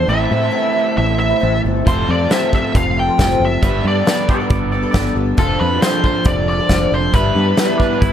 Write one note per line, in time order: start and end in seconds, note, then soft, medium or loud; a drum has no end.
0.00 0.10 F4 medium
0.00 0.12 A4 medium
0.00 0.12 C5 medium
0.08 0.26 A1 medium
0.08 0.31 A2 medium
0.08 0.29 E3 medium
0.08 1.86 A3 medium
0.08 0.30 C4 medium
0.08 0.31 E4 medium
0.08 0.32 A4 medium
0.08 0.96 E5 medium
0.30 0.49 A2 medium
0.30 0.42 E3 medium
0.30 0.42 C4 medium
0.30 0.41 E4 medium
0.30 0.38 A4 medium
0.39 0.50 C4 soft
0.39 0.51 E4 soft
0.39 0.51 A4 medium
0.50 0.74 A2 medium
0.50 0.70 E3 medium
0.50 0.72 C4 medium
0.50 0.72 E4 medium
0.50 0.74 A4 medium
0.72 0.85 E3 medium
0.72 0.85 C4 medium
0.72 0.84 E4 medium
0.72 0.83 A4 medium
0.84 1.17 C4 soft
0.84 1.19 E4 soft
0.84 1.19 A4 medium
0.98 1.32 A1 loud
0.98 1.18 E5 medium
1.18 1.30 E3 medium
1.18 1.29 C4 medium
1.18 1.28 E4 medium
1.18 1.27 A4 medium
1.18 1.61 E5 medium
1.29 1.39 C4 soft
1.29 1.40 E4 medium
1.29 1.40 A4 medium
1.40 1.60 A1 medium
1.40 1.52 A2 medium
1.40 1.52 E3 medium
1.40 1.52 C4 medium
1.40 1.51 E4 medium
1.40 1.51 A4 medium
1.52 1.63 C4 soft
1.52 1.64 E4 soft
1.52 1.64 A4 medium
1.63 1.82 G1 medium
1.63 1.85 E3 soft
1.63 1.86 C4 soft
1.63 1.86 E4 medium
1.63 1.86 A4 medium
1.86 2.04 F1 medium
1.86 2.08 F3 medium
1.86 2.07 G3 medium
1.86 3.62 A3 medium
1.86 2.08 C4 medium
1.86 2.09 F4 medium
1.86 2.09 A4 medium
1.86 2.10 C5 medium
1.86 kick medium
1.86 closed hi-hat medium
2.08 2.26 F2 medium
2.08 2.19 G3 medium
2.08 2.20 C4 medium
2.08 2.19 F4 medium
2.08 2.18 A4 medium
2.08 2.32 D5 medium
2.19 2.29 C4 soft
2.19 2.29 F4 soft
2.19 2.30 A4 soft
2.29 2.52 F3 medium
2.29 2.50 G3 medium
2.29 2.51 C4 medium
2.29 2.51 F4 medium
2.29 2.53 A4 medium
2.29 2.54 E5 medium
2.29 snare loud
2.29 closed hi-hat medium
2.51 2.63 G3 medium
2.51 2.63 C4 medium
2.51 2.64 F4 medium
2.51 2.63 A4 medium
2.51 kick medium
2.56 2.76 E5 medium
2.64 2.96 C4 soft
2.64 2.97 F4 soft
2.64 2.97 A4 medium
2.75 3.09 F1 loud
2.75 2.98 F5 medium
2.75 kick loud
2.75 closed hi-hat medium
2.96 3.08 G3 medium
2.96 3.08 C4 medium
2.96 3.08 F4 medium
2.96 3.06 A4 medium
2.96 3.21 G5 medium
3.07 3.18 C4 soft
3.07 3.19 F4 medium
3.07 3.19 A4 medium
3.18 3.36 F1 medium
3.18 3.40 F3 medium
3.18 3.40 G3 medium
3.18 3.40 C4 medium
3.18 3.40 F4 medium
3.18 3.41 A4 medium
3.18 kick medium
3.18 snare loud
3.18 closed hi-hat medium
3.22 3.43 G5 medium
3.30 snare soft
3.40 3.57 F#1 medium
3.40 3.62 G3 soft
3.40 3.63 C4 medium
3.40 3.63 F4 medium
3.40 3.64 A4 medium
3.45 3.84 E5 medium
3.62 3.80 G1 medium
3.62 3.84 G3 medium
3.62 3.85 B3 medium
3.62 3.84 D4 medium
3.62 3.86 A4 medium
3.62 5.39 B4 medium
3.62 kick medium
3.62 closed hi-hat medium
3.84 4.01 G2 medium
3.84 3.96 G3 medium
3.84 3.95 B3 medium
3.84 3.96 D4 medium
3.84 3.93 A4 medium
3.84 4.27 D5 medium
3.95 4.05 B3 soft
3.95 4.05 D4 soft
3.95 4.06 A4 medium
4.05 4.27 G3 medium
4.05 4.28 B3 medium
4.05 4.27 D4 medium
4.05 4.29 A4 medium
4.05 snare loud
4.05 closed hi-hat medium
4.28 4.39 G3 medium
4.28 4.40 B3 medium
4.28 4.40 D4 medium
4.28 4.49 A4 medium
4.28 4.39 A4 medium
4.28 4.50 D5 medium
4.28 kick medium
4.40 4.72 B3 medium
4.40 4.71 D4 medium
4.40 4.73 A4 medium
4.50 4.84 G1 medium
4.50 4.71 A4 medium
4.50 4.71 D5 medium
4.50 kick loud
4.50 closed hi-hat medium
4.71 4.83 G3 medium
4.71 4.82 B3 medium
4.71 4.84 D4 medium
4.71 4.93 A4 medium
4.71 4.81 A4 medium
4.71 4.90 D5 medium
4.83 4.92 B3 medium
4.83 4.92 D4 medium
4.83 4.93 A4 medium
4.91 5.11 G1 medium
4.91 5.13 G3 medium
4.91 5.16 B3 medium
4.91 5.14 D4 medium
4.91 5.16 A4 loud
4.91 5.14 D5 medium
4.91 kick medium
4.91 snare loud
4.91 closed hi-hat medium
5.06 snare soft
5.14 5.33 G1 medium
5.14 5.37 G3 medium
5.14 5.38 B3 medium
5.14 5.37 D4 medium
5.14 5.37 A4 medium
5.37 5.55 F1 medium
5.37 5.58 D3 medium
5.37 5.60 F3 medium
5.37 5.60 C4 medium
5.37 7.13 D4 medium
5.37 5.61 F4 medium
5.37 5.61 A4 medium
5.37 5.60 A4 medium
5.37 kick loud
5.37 closed hi-hat medium
5.59 5.78 F2 medium
5.59 5.71 D3 medium
5.59 5.72 C4 medium
5.59 5.72 F4 medium
5.59 5.71 A4 medium
5.59 5.81 B4 medium
5.72 5.84 C4 soft
5.72 5.84 F4 soft
5.72 5.83 A4 medium
5.82 6.03 D3 medium
5.82 6.06 F3 medium
5.82 6.05 C4 medium
5.82 6.06 F4 medium
5.82 6.04 C5 medium
5.82 snare loud
5.82 closed hi-hat medium
5.86 6.06 A4 medium
6.04 6.16 D3 medium
6.04 6.16 C4 medium
6.04 6.15 F4 medium
6.04 6.13 A4 medium
6.04 6.28 C5 medium
6.04 kick medium
6.14 6.48 C4 soft
6.14 6.49 F4 soft
6.14 6.48 A4 medium
6.25 6.60 F1 loud
6.25 6.48 D5 loud
6.25 kick loud
6.25 closed hi-hat medium
6.49 6.60 D3 medium
6.49 6.60 C4 medium
6.49 6.59 F4 medium
6.49 6.58 A4 medium
6.49 6.94 D5 loud
6.59 6.70 C4 soft
6.59 6.70 F4 medium
6.59 6.70 A4 medium
6.69 6.87 F1 medium
6.69 6.91 D3 medium
6.69 6.92 F3 medium
6.69 6.91 C4 medium
6.69 6.92 F4 medium
6.69 6.93 A4 medium
6.69 kick medium
6.69 snare loud
6.69 closed hi-hat medium
6.92 7.09 F1 medium
6.92 7.12 D3 medium
6.92 7.13 C4 medium
6.92 7.14 F4 medium
6.92 7.14 A4 medium
6.92 7.15 C5 medium
7.12 7.31 G1 medium
7.12 7.34 G3 medium
7.12 7.35 B3 medium
7.12 7.34 D4 medium
7.12 7.36 E4 medium
7.12 8.13 B4 medium
7.12 kick loud
7.12 closed hi-hat medium
7.35 7.53 G2 medium
7.35 7.47 G3 medium
7.35 7.45 B3 medium
7.35 7.46 D4 medium
7.35 7.43 E4 medium
7.44 7.56 B3 soft
7.44 7.56 D4 soft
7.44 7.57 E4 medium
7.56 7.79 G3 medium
7.56 7.80 B3 medium
7.56 7.80 D4 medium
7.56 7.80 E4 medium
7.56 snare loud
7.56 closed hi-hat medium
7.78 7.91 G3 medium
7.78 7.91 B3 medium
7.78 8.00 D4 medium
7.78 7.92 D4 medium
7.78 kick medium
7.82 7.90 E4 medium
7.91 8.13 B3 medium
7.91 8.13 D4 medium
7.91 8.13 E4 medium
8.01 8.13 G1 loud
8.01 8.13 E4 medium
8.01 kick loud
8.01 closed hi-hat medium